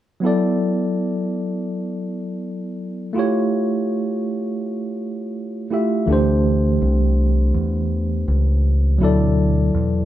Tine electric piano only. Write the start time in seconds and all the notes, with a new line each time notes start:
0.20 F#3 B3 E4
0.25 A4 D5
3.13 A3 E4 F4
3.18 G4 C#5
5.70 A3 E4 F4 G4 E5
6.06 E3 A3 D4
6.11 G4 C5
8.98 B2 F#3 E4
9.03 A4 D5